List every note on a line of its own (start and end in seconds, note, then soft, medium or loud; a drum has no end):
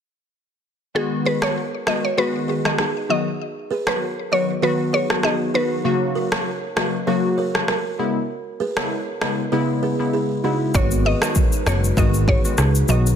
0.95 1.38 D#3 medium
0.95 1.38 G#3 medium
0.95 1.38 B3 medium
0.95 1.39 F#4 loud
0.95 1.10 G#4 medium
1.26 1.39 G#4 medium
1.26 1.39 B4 medium
1.26 1.40 B4 medium
1.42 1.59 D#3 medium
1.42 1.59 G#3 medium
1.42 1.59 B3 medium
1.42 1.59 F#4 medium
1.42 1.54 A#4 medium
1.42 1.53 C#5 medium
1.42 1.55 C#5 medium
1.42 cross-stick loud
1.87 2.06 D#3 medium
1.87 2.06 G#3 medium
1.87 2.06 B3 medium
1.87 2.06 F#4 medium
1.87 2.01 B4 medium
1.87 2.00 D#5 medium
1.87 2.02 D#5 medium
1.87 cross-stick loud
2.05 2.16 C#5 medium
2.17 2.61 D#3 medium
2.17 2.61 G#3 medium
2.17 2.61 B3 medium
2.17 2.61 F#4 loud
2.17 2.31 G#4 medium
2.17 2.31 B4 medium
2.17 2.32 B4 medium
2.48 2.62 G#4 medium
2.48 2.61 B4 medium
2.65 2.81 D#3 medium
2.65 2.81 G#3 medium
2.65 2.81 B3 medium
2.65 2.82 F#4 medium
2.65 2.77 D#5 medium
2.65 cross-stick medium
2.78 3.03 D#4 medium
2.78 3.03 G#4 medium
2.78 cross-stick medium
3.09 3.28 D#3 medium
3.09 3.28 F#3 medium
3.09 3.28 B3 medium
3.09 3.28 F#4 medium
3.09 3.24 D#5 medium
3.71 3.84 G#4 medium
3.71 3.84 B4 medium
3.87 4.04 D#3 medium
3.87 4.04 F#3 medium
3.87 4.04 B3 medium
3.87 4.04 F#4 medium
3.87 3.99 A#4 medium
3.87 4.00 B4 medium
3.87 3.98 C#5 medium
3.87 cross-stick loud
4.31 4.51 D#3 medium
4.31 4.51 F#3 medium
4.31 4.51 B3 medium
4.31 4.51 F#4 medium
4.31 4.46 B4 medium
4.31 4.47 C#5 medium
4.31 4.45 D#5 medium
4.62 5.06 D#3 medium
4.62 5.06 F#3 medium
4.62 5.06 B3 medium
4.62 5.06 F#4 loud
4.62 4.76 F#4 medium
4.62 4.76 B4 medium
4.62 4.77 B4 medium
4.93 5.07 G#4 medium
4.93 5.06 B4 medium
4.93 5.08 C#5 medium
5.09 5.51 D#3 medium
5.09 5.51 F#3 medium
5.09 5.51 B3 medium
5.09 5.51 F#4 medium
5.09 cross-stick medium
5.23 5.37 D#4 medium
5.23 5.37 G#4 medium
5.23 5.38 D#5 medium
5.23 cross-stick medium
5.54 5.82 D#3 medium
5.54 5.83 F#3 medium
5.54 5.83 B3 medium
5.54 5.68 D#4 medium
5.54 5.68 F#4 medium
5.54 5.83 F#4 medium
5.54 5.69 B4 medium
5.84 6.28 C#3 medium
5.84 6.28 F#3 medium
5.84 6.28 A#3 medium
5.84 6.28 F#4 loud
6.15 6.29 F#4 medium
6.15 6.29 A#4 medium
6.32 6.49 C#3 medium
6.32 6.49 F#3 medium
6.32 6.49 A#3 medium
6.32 6.49 F#4 medium
6.32 6.44 A#4 medium
6.32 6.43 C#5 medium
6.32 cross-stick loud
6.76 6.95 C#3 medium
6.76 6.96 F#3 medium
6.76 6.96 A#3 medium
6.76 6.96 F#4 medium
6.76 6.90 B4 medium
6.76 6.90 D#5 medium
6.76 cross-stick loud
7.07 7.51 C#3 medium
7.07 7.51 F#3 medium
7.07 7.51 A#3 medium
7.07 7.51 F#4 loud
7.07 7.21 A#4 medium
7.07 7.20 C#5 medium
7.38 7.52 A#4 medium
7.38 7.51 C#5 medium
7.54 7.71 C#3 medium
7.54 7.71 F#3 medium
7.54 7.71 A#3 medium
7.54 7.71 F#4 medium
7.54 cross-stick medium
7.68 7.93 F#4 medium
7.68 7.93 A#4 medium
7.68 cross-stick medium
7.99 8.18 C#3 medium
7.99 8.18 G#3 medium
7.99 8.18 B3 medium
7.99 8.18 E4 medium
8.60 8.74 G#4 medium
8.60 8.74 B4 medium
8.77 8.93 C#3 medium
8.77 8.94 G#3 medium
8.77 8.94 B3 medium
8.77 8.94 E4 medium
8.77 8.88 A#4 medium
8.77 8.88 C#5 medium
8.77 cross-stick loud
9.21 9.40 C#3 medium
9.21 9.41 G#3 medium
9.21 9.41 B3 medium
9.21 9.41 E4 medium
9.21 9.35 B4 medium
9.21 9.35 D#5 medium
9.21 cross-stick loud
9.52 9.95 C#3 medium
9.52 9.96 G#3 medium
9.52 9.96 B3 medium
9.52 9.96 E4 loud
9.52 9.66 G#4 medium
9.52 9.65 B4 medium
9.83 9.97 G#4 medium
9.83 9.96 B4 medium
9.99 10.41 C#3 medium
9.99 10.41 G#3 medium
9.99 10.41 B3 medium
9.99 10.41 E4 medium
10.13 10.27 E4 medium
10.13 10.27 G#4 medium
10.44 10.72 C#3 medium
10.44 10.72 G#3 medium
10.44 10.72 B3 medium
10.44 10.58 D#4 medium
10.44 10.73 E4 medium
10.44 10.57 F#4 medium
10.74 11.14 G#1 loud
10.74 11.18 D#3 medium
10.74 11.18 G#3 medium
10.74 12.87 G#3 medium
10.74 11.18 B3 medium
10.74 12.87 D#4 medium
10.74 13.16 F#4 medium
10.74 11.18 F#4 loud
10.74 12.87 B4 medium
10.74 10.89 C#5 medium
10.74 kick loud
10.74 shaker medium
10.91 shaker medium
11.05 11.19 G#4 medium
11.05 11.19 B4 medium
11.05 11.20 D#5 medium
11.22 11.38 D#3 medium
11.22 11.38 G#3 medium
11.22 11.39 B3 medium
11.22 11.39 F#4 medium
11.22 11.33 A#4 medium
11.22 11.33 C#5 medium
11.22 11.34 D#5 medium
11.22 cross-stick loud
11.22 shaker medium
11.35 kick medium
11.35 shaker medium
11.52 shaker medium
11.66 11.92 F#1 medium
11.66 11.85 D#3 medium
11.66 11.85 G#3 medium
11.66 11.86 B3 medium
11.66 11.86 F#4 medium
11.66 11.80 B4 medium
11.66 11.81 C#5 medium
11.66 11.80 D#5 medium
11.66 cross-stick loud
11.66 shaker medium
11.84 shaker medium
11.97 12.37 G#1 loud
11.97 12.40 D#3 medium
11.97 12.40 G#3 medium
11.97 12.41 B3 medium
11.97 12.41 F#4 medium
11.97 12.11 G#4 medium
11.97 12.10 B4 medium
11.97 12.12 D#5 medium
11.97 kick loud
11.97 shaker medium
12.14 shaker medium
12.28 12.41 G#4 medium
12.28 12.41 B4 medium
12.28 12.43 C#5 medium
12.28 kick medium
12.44 12.61 D#3 medium
12.44 12.61 G#3 medium
12.44 12.61 B3 medium
12.44 12.61 F#4 medium
12.44 shaker medium
12.58 12.84 C#2 loud
12.58 12.83 D#4 medium
12.58 12.82 G#4 medium
12.58 cross-stick medium
12.58 shaker medium
12.75 shaker medium
12.88 13.14 B1 loud
12.88 13.08 D#3 medium
12.88 13.08 F#3 medium
12.88 13.16 B3 medium
12.88 13.08 B3 medium
12.88 13.16 D#4 medium
12.88 13.08 F#4 medium
12.88 13.04 D#5 medium
12.88 shaker medium
13.07 shaker medium